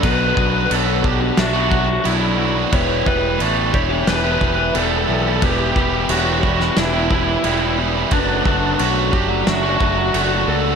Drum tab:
CC |x---x---x---x---|x---x---x---x---|x---x---x---x---|x---x---x---x---|
SD |--------o-------|--------o-------|-------oo-------|--------o-------|
BD |o-o---o---o-----|o-o---o---o-----|o-o---o---o-----|o-o---o---o-----|